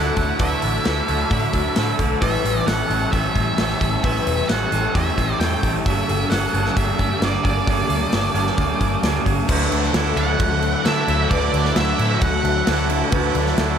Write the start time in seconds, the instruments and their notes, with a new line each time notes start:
Already playing: overdriven electric guitar D3 F#4 A4, clean electric guitar D3 F#3 A3 D4 E4, twelve-string acoustic guitar F#4 A4, string machine A4 E5 F#5 D6, lead electric guitar F#5
0.17 picked electric bass D2, clean electric guitar A3 D4 E4, overdriven electric guitar F#4 A4, kick, open hi-hat
0.39 picked electric bass D2, clean electric guitar D3 F#3 A3 D4 E4, twelve-string acoustic guitar B4, lead electric guitar E5, kick, open hi-hat
0.43 overdriven electric guitar F#4 A4
0.62 picked electric bass A1, clean electric guitar A3 D4 E4, overdriven electric guitar F#4 A4, open hi-hat
0.84 picked electric bass D2, clean electric guitar F#3 A3 D4 E4, overdriven electric guitar F#4, twelve-string acoustic guitar A4, snare, open hi-hat
0.88 overdriven electric guitar A4
1.07 picked electric bass D2, clean electric guitar D3 F#3 A3 D4 E4, overdriven electric guitar F#4 A4, open hi-hat
1.30 picked electric bass A2, clean electric guitar F#3 A3 D4 E4, twelve-string acoustic guitar F#4, overdriven electric guitar F#4 A4, kick, open hi-hat
1.53 picked electric bass D2, overdriven electric guitar D3 F#4 A4, clean electric guitar A3 D4 E4, kick, open hi-hat
1.76 picked electric bass A2, clean electric guitar D3 F#3 A3 D4 E4, overdriven electric guitar F#4 A4, twelve-string acoustic guitar A4, snare, open hi-hat
1.98 picked electric bass B1, clean electric guitar A3 D4 E4, overdriven electric guitar F#4 A4, kick, open hi-hat
2.20 picked electric bass A1, clean electric guitar A2 E3 G3 C#4 A4, string machine G4 A5 C#6, twelve-string acoustic guitar B4, lead electric guitar E5, kick, open hi-hat
2.25 overdriven electric guitar E4
2.43 picked electric bass A1, clean electric guitar G3 C#4 A4, overdriven electric guitar E4, open hi-hat
2.65 picked electric bass A1, clean electric guitar E3 G3 C#4 A4, twelve-string acoustic guitar A4, lead electric guitar F#5, snare, open hi-hat
2.70 overdriven electric guitar E4
2.88 picked electric bass A1, clean electric guitar A2 E3 G3 C#4 A4, overdriven electric guitar E4, open hi-hat
3.11 picked electric bass A1, clean electric guitar E3 G3 C#4 A4, twelve-string acoustic guitar G4, lead electric guitar E5, kick, open hi-hat
3.15 overdriven electric guitar E4
3.35 picked electric bass A2, overdriven electric guitar A2 E3 E4, clean electric guitar G3 C#4 A4, kick, open hi-hat
3.57 picked electric bass A1, clean electric guitar A2 E3 G3 C#4 A4, overdriven electric guitar E4, twelve-string acoustic guitar A4, snare, open hi-hat
3.70 snare
3.81 picked electric bass A1, clean electric guitar G3 C#4 A4, overdriven electric guitar E4, kick, open hi-hat
4.03 picked electric bass A1, clean electric guitar A2 E3 G3 C#4 A4, twelve-string acoustic guitar B4, lead electric guitar E5, kick, open hi-hat
4.08 overdriven electric guitar E4
4.26 picked electric bass E1, clean electric guitar G3 C#4 A4, overdriven electric guitar E4, open hi-hat
4.49 picked electric bass A1, clean electric guitar E3 G3 C#4 A4, overdriven electric guitar E4, twelve-string acoustic guitar A4, lead electric guitar F#5, snare, open hi-hat
4.72 picked electric bass A1, clean electric guitar A2 E3 G3 C#4 A4, overdriven electric guitar E4, open hi-hat
4.95 picked electric bass E2, clean electric guitar E3 G3 C#4 A4, overdriven electric guitar E4, twelve-string acoustic guitar G4, lead electric guitar E5, kick, open hi-hat
5.16 picked electric bass A1, overdriven electric guitar A2 E3 E4, clean electric guitar C#4 A4, kick, open hi-hat
5.21 clean electric guitar G3
5.40 picked electric bass E2, clean electric guitar A2 E3 G3 C#4, overdriven electric guitar E4, twelve-string acoustic guitar A4, lead electric guitar G5, snare, open hi-hat
5.44 clean electric guitar A4
5.63 picked electric bass A1, clean electric guitar C#4 A4, overdriven electric guitar E4, kick, open hi-hat
5.67 clean electric guitar G3
5.86 picked electric bass G1, clean electric guitar G2 D3 G3 A#3 D4 A4, string machine A#3 D6, lead electric guitar E5, kick, open hi-hat
6.09 picked electric bass G1, clean electric guitar G3 A#3 D4 A4, open hi-hat
6.30 picked electric bass G1, overdriven electric guitar D3, clean electric guitar G3 A#3, twelve-string acoustic guitar A4, lead electric guitar F#5, snare, open hi-hat
6.34 clean electric guitar D4 A4
6.53 picked electric bass G1, clean electric guitar G2 D3 G3 A#3 D4 A4, open hi-hat
6.66 snare
6.76 picked electric bass G1, overdriven electric guitar D3, clean electric guitar G3 A#3 D4 A4, twelve-string acoustic guitar G4, lead electric guitar E5, kick, open hi-hat
6.99 picked electric bass G2, overdriven electric guitar G2 D3, clean electric guitar G3 A#3 D4 A4, kick, open hi-hat
7.21 picked electric bass G1, clean electric guitar G2 D3 G3 A#3 D4 A4, lead electric guitar D5, snare, open hi-hat
7.34 snare
7.44 picked electric bass G1, clean electric guitar G3 A#3 D4 A4, lead electric guitar D5, kick, open hi-hat
7.66 picked electric bass G1, clean electric guitar G2 D3 G3 A#3 D4 A4, string machine G5, kick, open hi-hat
7.89 picked electric bass D2, clean electric guitar G3 A#3 D4 A4, open hi-hat
8.12 picked electric bass G1, overdriven electric guitar D3, clean electric guitar G3 A#3 D4 A4, twelve-string acoustic guitar A4, snare, open hi-hat
8.34 picked electric bass G1, clean electric guitar G2 D3 G3 A#3 D4 A4, open hi-hat
8.47 snare
8.57 picked electric bass D2, overdriven electric guitar D3, clean electric guitar G3 A#3 D4 A4, twelve-string acoustic guitar G4, kick, open hi-hat
8.80 picked electric bass G1, overdriven electric guitar G2 D3, clean electric guitar G3 A#3 D4 A4, kick, open hi-hat
9.03 picked electric bass D2, clean electric guitar G2 D3 G3 A#3 D4 A4, snare, open hi-hat
9.15 snare
9.25 picked electric bass G1, clean electric guitar G3 A#3 D4 A4, kick, open hi-hat
9.48 picked electric bass D2, clean electric guitar D3 F#3 A3 D4 E4, string machine A4 E5 F#5 D6, twelve-string acoustic guitar B4, kick, crash
9.71 picked electric bass D2, overdriven electric guitar F#3, clean electric guitar A3 D4 E4, crash
9.83 snare
9.94 picked electric bass D2, overdriven electric guitar D3, clean electric guitar F#3 A3 D4 E4, twelve-string acoustic guitar A4, snare, crash
10.16 picked electric bass D2, overdriven electric guitar F#3, clean electric guitar A3 D4 E4, lead electric guitar F#5, crash
10.40 picked electric bass D2, twelve-string acoustic guitar F#4, kick, crash
10.62 crash
10.85 overdriven electric guitar D3, picked electric bass D3, clean electric guitar F#3 A3 D4 E4, twelve-string acoustic guitar A4, lead electric guitar E5, snare, crash
11.07 picked electric bass D2, overdriven electric guitar F#3, clean electric guitar A3 D4 E4, crash
11.30 picked electric bass D2, clean electric guitar D3 F#3 A3 D4 E4, twelve-string acoustic guitar B4, lead electric guitar D5, kick, crash
11.53 picked electric bass D2, overdriven electric guitar F#3, clean electric guitar A3 D4 E4, crash
11.65 snare
11.76 picked electric bass D2, overdriven electric guitar D3, clean electric guitar F#3 A3 D4 E4, twelve-string acoustic guitar A4, lead electric guitar E5, snare, crash
11.98 picked electric bass A2, clean electric guitar A3 D4 E4, crash
12.02 overdriven electric guitar F#3
12.21 picked electric bass D2, twelve-string acoustic guitar F#4, lead electric guitar F#5, kick, crash
12.44 picked electric bass D2, crash
12.66 picked electric bass D2, overdriven electric guitar D3, clean electric guitar F#3 A3 D4, twelve-string acoustic guitar A4, snare, crash
12.70 clean electric guitar E4
12.89 clean electric guitar A3 D4 E4, crash
12.93 overdriven electric guitar F#3
13.11 picked electric bass D2, clean electric guitar D3 F#3 A3 D4 E4, twelve-string acoustic guitar B4, kick, crash
13.33 picked electric bass D2, overdriven electric guitar F#3, clean electric guitar A3 D4 E4, crash
13.47 snare
13.57 picked electric bass D2, overdriven electric guitar D3, clean electric guitar F#3 A3 D4 E4, twelve-string acoustic guitar A4, snare, crash